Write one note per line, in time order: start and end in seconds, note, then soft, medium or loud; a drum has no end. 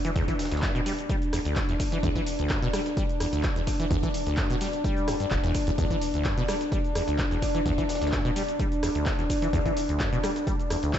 0.00 10.99 D4 medium
0.05 0.11 E3 medium
0.05 snare soft
0.05 closed hi-hat medium
0.05 cabasa soft
0.16 0.23 E2 loud
0.16 kick loud
0.16 closed hi-hat medium
0.16 tambourine medium
0.16 cabasa soft
0.28 0.34 E3 medium
0.28 kick medium
0.28 closed hi-hat soft
0.28 cabasa soft
0.39 snare medium
0.39 open hi-hat loud
0.39 tambourine medium
0.39 cabasa medium
0.45 snare medium
0.45 tambourine medium
0.51 0.64 D2 medium
0.51 snare medium
0.51 closed hi-hat medium
0.51 tambourine medium
0.51 cabasa soft
0.57 snare medium
0.57 tambourine medium
0.62 0.73 G2 medium
0.62 kick loud
0.62 snare loud
0.62 clap loud
0.62 closed hi-hat medium
0.62 tambourine medium
0.62 cabasa soft
0.75 0.81 B2 loud
0.75 closed hi-hat soft
0.75 cabasa soft
0.86 0.93 G3 medium
0.86 open hi-hat loud
0.86 tambourine medium
0.86 cabasa medium
0.98 closed hi-hat medium
0.98 cabasa soft
1.09 1.16 G3 medium
1.09 kick loud
1.09 closed hi-hat medium
1.09 tambourine medium
1.09 cabasa soft
1.22 closed hi-hat soft
1.22 cabasa soft
1.33 1.40 E2 medium
1.33 cross-stick medium
1.33 snare soft
1.33 open hi-hat loud
1.33 tambourine medium
1.33 cabasa medium
1.45 1.58 D2 medium
1.45 closed hi-hat medium
1.45 cabasa soft
1.56 1.60 E2 loud
1.56 kick loud
1.56 snare loud
1.56 clap loud
1.56 closed hi-hat medium
1.56 tambourine medium
1.56 cabasa soft
1.69 1.75 E2 medium
1.69 snare soft
1.69 closed hi-hat soft
1.69 cabasa soft
1.80 kick medium
1.80 open hi-hat loud
1.80 tambourine medium
1.80 cabasa medium
1.92 1.98 E3 medium
1.92 snare medium
1.92 closed hi-hat medium
1.92 cabasa soft
2.03 2.10 E2 loud
2.03 kick loud
2.03 closed hi-hat medium
2.03 tambourine medium
2.03 cabasa soft
2.15 2.22 E3 medium
2.15 kick medium
2.15 closed hi-hat soft
2.15 cabasa soft
2.27 open hi-hat loud
2.27 tambourine medium
2.27 cabasa medium
2.39 2.52 D2 medium
2.39 closed hi-hat medium
2.39 cabasa soft
2.49 2.60 G2 medium
2.49 kick loud
2.49 snare loud
2.49 clap loud
2.49 closed hi-hat soft
2.49 tambourine medium
2.49 cabasa soft
2.62 2.68 B2 loud
2.62 closed hi-hat soft
2.62 cabasa soft
2.73 2.80 G3 medium
2.73 cross-stick medium
2.73 snare medium
2.73 open hi-hat loud
2.73 tambourine medium
2.73 cabasa medium
2.86 snare soft
2.86 closed hi-hat soft
2.86 cabasa soft
2.97 3.04 G3 medium
2.97 kick loud
2.97 closed hi-hat medium
2.97 tambourine medium
2.97 cabasa soft
3.09 closed hi-hat soft
3.09 cabasa soft
3.20 3.27 E2 medium
3.20 cross-stick medium
3.20 open hi-hat loud
3.20 tambourine medium
3.20 cabasa medium
3.33 3.45 D2 medium
3.33 closed hi-hat soft
3.33 cabasa soft
3.43 3.48 E2 loud
3.43 kick loud
3.43 snare loud
3.43 clap loud
3.43 closed hi-hat soft
3.43 tambourine medium
3.43 cabasa soft
3.56 3.62 E2 medium
3.56 snare soft
3.56 closed hi-hat soft
3.56 cabasa soft
3.67 kick medium
3.67 snare soft
3.67 open hi-hat loud
3.67 tambourine medium
3.67 cabasa medium
3.79 3.86 E3 medium
3.79 snare soft
3.79 closed hi-hat soft
3.79 cabasa soft
3.91 3.97 E2 loud
3.91 kick loud
3.91 closed hi-hat soft
3.91 tambourine medium
3.91 cabasa soft
4.03 4.09 E3 medium
4.03 kick medium
4.03 closed hi-hat soft
4.03 cabasa soft
4.14 open hi-hat loud
4.14 tambourine medium
4.14 cabasa medium
4.26 4.39 D2 medium
4.26 snare soft
4.26 closed hi-hat soft
4.26 cabasa soft
4.37 4.48 G2 medium
4.37 kick loud
4.37 snare loud
4.37 clap loud
4.37 closed hi-hat soft
4.37 tambourine medium
4.37 cabasa soft
4.50 4.56 B2 loud
4.50 closed hi-hat soft
4.50 cabasa soft
4.61 4.68 G3 medium
4.61 open hi-hat loud
4.61 tambourine medium
4.61 cabasa medium
4.73 closed hi-hat soft
4.73 cabasa soft
4.84 5.09 G3 medium
4.84 kick loud
4.84 closed hi-hat soft
4.84 tambourine medium
4.84 cabasa soft
4.97 closed hi-hat soft
4.97 cabasa soft
5.08 5.15 E2 medium
5.08 cross-stick medium
5.08 snare loud
5.08 open hi-hat loud
5.08 tambourine medium
5.08 cabasa medium
5.20 5.26 G2 medium
5.20 snare soft
5.20 closed hi-hat medium
5.20 cabasa soft
5.31 5.38 E1 loud
5.31 kick loud
5.31 clap loud
5.31 closed hi-hat soft
5.31 tambourine medium
5.31 cabasa soft
5.44 5.53 E2 loud
5.44 snare loud
5.44 closed hi-hat soft
5.44 tambourine medium
5.44 cabasa soft
5.55 kick medium
5.55 open hi-hat loud
5.55 cabasa medium
5.67 5.71 E2 loud
5.67 closed hi-hat soft
5.67 tambourine medium
5.67 cabasa soft
5.78 5.85 E2 loud
5.78 kick loud
5.78 closed hi-hat soft
5.78 tambourine medium
5.78 cabasa soft
5.90 5.97 E3 medium
5.90 kick medium
5.90 closed hi-hat soft
5.90 cabasa soft
6.01 open hi-hat loud
6.01 tambourine medium
6.01 cabasa medium
6.14 6.27 D2 medium
6.14 closed hi-hat soft
6.14 cabasa soft
6.25 6.35 G2 medium
6.25 kick loud
6.25 snare loud
6.25 clap loud
6.25 closed hi-hat soft
6.25 tambourine medium
6.25 cabasa soft
6.37 6.43 B2 loud
6.37 closed hi-hat soft
6.37 cabasa soft
6.48 6.55 G3 medium
6.48 cross-stick medium
6.48 snare medium
6.48 open hi-hat loud
6.48 tambourine medium
6.48 cabasa medium
6.61 snare soft
6.61 closed hi-hat soft
6.61 cabasa soft
6.72 6.79 G3 medium
6.72 kick loud
6.72 closed hi-hat soft
6.72 tambourine medium
6.72 cabasa soft
6.84 closed hi-hat soft
6.84 cabasa soft
6.95 7.02 E2 medium
6.95 cross-stick medium
6.95 open hi-hat loud
6.95 tambourine medium
6.95 cabasa medium
7.08 7.20 D2 medium
7.08 closed hi-hat soft
7.08 cabasa soft
7.19 7.23 E2 loud
7.19 kick loud
7.19 snare loud
7.19 clap loud
7.19 closed hi-hat soft
7.19 tambourine medium
7.19 cabasa soft
7.31 7.37 E2 medium
7.31 snare soft
7.31 closed hi-hat soft
7.31 cabasa soft
7.42 kick medium
7.42 snare soft
7.42 open hi-hat loud
7.42 tambourine medium
7.42 cabasa medium
7.55 7.61 E3 medium
7.55 snare soft
7.55 closed hi-hat soft
7.55 cabasa soft
7.66 7.72 E2 loud
7.66 kick loud
7.66 closed hi-hat medium
7.66 tambourine medium
7.66 cabasa soft
7.78 7.84 E3 medium
7.78 kick medium
7.78 closed hi-hat soft
7.78 cabasa soft
7.89 snare medium
7.89 open hi-hat loud
7.89 tambourine medium
7.89 cabasa medium
7.95 snare medium
7.95 tambourine medium
8.01 8.14 D2 medium
8.01 snare medium
8.01 closed hi-hat medium
8.01 tambourine medium
8.01 cabasa soft
8.07 snare medium
8.07 tambourine medium
8.12 8.23 G2 medium
8.12 kick loud
8.12 snare loud
8.12 clap loud
8.12 closed hi-hat soft
8.12 tambourine medium
8.12 cabasa soft
8.25 8.31 B2 loud
8.25 closed hi-hat soft
8.25 cabasa soft
8.36 8.43 G3 medium
8.36 open hi-hat loud
8.36 tambourine medium
8.36 cabasa medium
8.48 closed hi-hat medium
8.48 cabasa soft
8.59 8.66 G3 medium
8.59 kick loud
8.59 closed hi-hat medium
8.59 tambourine medium
8.59 cabasa soft
8.72 closed hi-hat soft
8.72 cabasa soft
8.83 8.90 E2 medium
8.83 cross-stick medium
8.83 snare soft
8.83 open hi-hat loud
8.83 tambourine medium
8.83 cabasa medium
8.95 9.08 D2 medium
8.95 closed hi-hat medium
8.95 cabasa soft
9.06 9.10 E2 loud
9.06 kick loud
9.06 snare loud
9.06 clap loud
9.06 closed hi-hat soft
9.06 tambourine medium
9.06 cabasa soft
9.19 9.25 E2 medium
9.19 snare soft
9.19 closed hi-hat soft
9.19 cabasa soft
9.30 kick medium
9.30 open hi-hat loud
9.30 tambourine medium
9.30 cabasa medium
9.42 9.48 E3 medium
9.42 snare medium
9.42 closed hi-hat soft
9.42 cabasa soft
9.53 9.60 E2 loud
9.53 kick loud
9.53 closed hi-hat medium
9.53 tambourine medium
9.53 cabasa soft
9.66 9.72 E3 medium
9.66 kick medium
9.66 closed hi-hat soft
9.66 cabasa soft
9.77 open hi-hat loud
9.77 tambourine medium
9.77 cabasa medium
9.89 10.02 D2 medium
9.89 closed hi-hat medium
9.89 cabasa soft
10.00 10.10 G2 medium
10.00 kick loud
10.00 snare loud
10.00 clap loud
10.00 closed hi-hat medium
10.00 tambourine medium
10.00 cabasa soft
10.12 10.19 B2 loud
10.12 closed hi-hat soft
10.12 cabasa soft
10.23 10.30 G3 medium
10.23 cross-stick medium
10.23 snare medium
10.23 open hi-hat loud
10.23 tambourine medium
10.23 cabasa medium
10.36 snare soft
10.36 closed hi-hat medium
10.36 cabasa soft
10.47 10.54 G3 medium
10.47 kick loud
10.47 closed hi-hat medium
10.47 tambourine medium
10.47 cabasa soft
10.59 closed hi-hat soft
10.59 cabasa soft
10.70 10.77 E2 medium
10.70 cross-stick medium
10.70 open hi-hat loud
10.70 tambourine medium
10.70 cabasa medium
10.83 10.95 D2 medium
10.83 closed hi-hat soft
10.83 closed hi-hat medium
10.83 cabasa soft
10.93 10.98 E2 loud
10.93 kick loud
10.93 snare loud
10.93 clap loud
10.93 closed hi-hat medium
10.93 tambourine medium
10.93 cabasa soft